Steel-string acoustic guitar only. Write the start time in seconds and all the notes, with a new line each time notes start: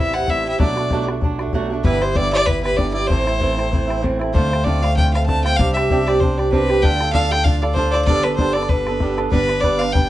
Already playing: E3 G3 C4
0.00 E4
0.14 G3 C4 E4
0.28 A2 E3 G3 C4 E4
0.44 G3 C4 E4
0.58 B2 F#3 A3 D4 F#4
0.76 A3 D4 F#4
0.91 B2 F#3 A3 D4 F#4
1.08 A3 D4 F#4
1.21 F#3 A3 D4 F#4
1.39 A3 D4 F#4
1.53 B2 F#3 A3 D4 F#4
1.70 A3 D4 F#4
1.84 G2 D3 E3 G3 B3 E4
2.01 E3 G3 B3 E4
2.14 G2 D3 E3 G3 B3 E4
2.32 E3 G3 B3 E4
2.45 E3 G3 B3 E4
2.63 E3 G3 B3 E4
2.77 G2 D3 E3 G3 B3 E4
2.94 E3 G3 B3 E4
3.09 A2 E3 A3 C4 E4
3.26 A3 C4 E4
3.40 A2 E3 A3 C4 E4
3.57 A3 C4 E4
3.71 E3 A3 C4 E4
3.87 A3 C4 E4
4.01 A2 E3 A3 C4 E4
4.19 A3 C4 E4
4.33 D3 A3 C4 F4
4.51 A3 C4 F4
4.65 D3 A3 C4 F4
4.82 A3 C4 F4
4.95 D3 A3 C4 F4
5.13 A3 C4 F4
5.27 D3 A3 C4 F4
5.44 A3 C4 F4
5.58 C3 G3 C4 D4 G4
5.76 C4 D4 G4
5.90 C3 G3 C4 D4 G4
6.06 C4 D4 G4
6.20 G3 C4 D4 G4
6.38 C4 D4 G4
6.51 C3 G3 C4 D4 G4
6.70 C4 D4 G4
6.82 D3 D4 F4 A4
7.00 D4 F4 A4
7.13 D3 D4 F4 A4
7.31 D4 F4 A4
7.44 D3 D4 F4 A4
7.62 D4 F4 A4
7.75 D3 D4 F4 A4
7.93 D4 F4 A4
8.07 G3 B3 D4 A4
8.24 B3 D4 A4
8.39 G3 B3 D4 A4
8.56 B3 D4 A4
8.70 G3 B3 D4 A4
8.88 B3 D4 A4
9.01 G3 B3 D4 A4
9.17 B3 D4 A4
9.31 G3 B3 D4 B4
9.48 B3 D4 B4
9.61 G3 B3 D4 B4
9.79 B3 D4 B4
9.93 G3 B3 D4 B4